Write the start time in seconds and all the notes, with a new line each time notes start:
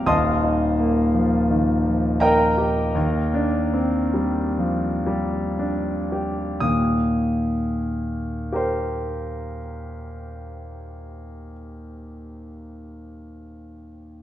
0.06 D#1 D#2 D#5 A5 C6 D#6
0.44 D#4
0.79 A#3
1.14 F3
1.50 D#3
1.86 F3
2.20 D#4 A#4 D#5 G5 A#5
2.58 G4
2.95 D#2
3.34 D4
3.73 C4
4.14 G3
4.58 F3
5.06 G3
5.59 D4
6.12 G4
6.60 D#2 A#2 D#6
8.52 G4 A#4 C5